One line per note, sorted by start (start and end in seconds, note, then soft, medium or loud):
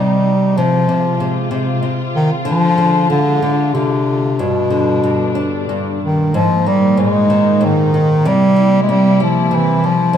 0.00 0.56 C3 medium
0.00 0.56 C3 soft
0.00 0.54 G3 medium
0.00 0.55 G3 medium
0.00 0.59 G3 medium
0.00 0.56 D#4 medium
0.57 0.87 C3 medium
0.57 2.46 C3 medium
0.57 1.52 F3 medium
0.57 2.46 G#3 medium
0.57 4.36 F4 medium
0.89 1.19 C3 soft
1.20 1.50 C3 soft
1.51 1.81 C3 medium
1.83 2.45 C3 soft
2.16 2.30 D#3 medium
2.45 2.76 D3 medium
2.45 4.37 D3 medium
2.45 3.07 F3 loud
2.45 4.37 G#3 medium
2.78 3.09 D3 soft
3.10 3.41 D3 medium
3.10 3.75 D3 medium
3.42 3.73 D3 soft
3.74 4.41 C3 medium
3.74 4.37 D3 soft
4.37 5.02 G2 medium
4.37 6.32 B2 medium
4.37 5.69 B2 medium
4.37 6.32 G3 medium
4.37 6.32 D4 medium
4.70 5.98 D3 soft
5.04 5.68 G2 soft
5.35 6.31 D4 medium
5.69 6.33 G2 soft
6.04 6.34 D#3 medium
6.33 6.96 G#2 medium
6.33 8.24 A#2 medium
6.33 6.69 F3 medium
6.33 8.24 A#3 medium
6.33 8.23 D#4 medium
6.66 7.29 D#3 soft
6.66 7.00 G3 medium
6.97 7.59 G#2 medium
6.97 7.67 G#3 medium
7.30 7.93 D#3 medium
7.61 8.23 G#2 medium
7.65 8.29 D#3 medium
7.94 8.25 D#3 soft
8.25 8.88 C3 medium
8.25 10.13 C3 medium
8.25 8.82 G3 medium
8.25 10.13 A#3 medium
8.25 10.13 E4 medium
8.56 9.19 G3 soft
8.82 8.92 G#3 medium
8.89 9.50 C3 medium
8.89 9.21 G3 medium
9.20 9.57 F3 medium
9.20 9.83 G3 medium
9.51 10.12 C3 soft
9.55 9.87 E3 medium
9.84 10.17 F3 medium
9.84 10.14 G3 soft
10.13 10.17 F2 medium